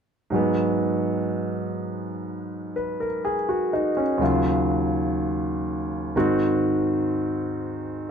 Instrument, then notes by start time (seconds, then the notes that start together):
grand piano
0.30 G#2 F#3 G#3
0.35 B3
2.76 B4
3.00 A#4
3.25 G#4
3.49 F#4
3.73 D#4
3.97 C#4
4.18 D#2 C#3 F#3
4.23 F4
6.16 G#2 D#3 C4 F#4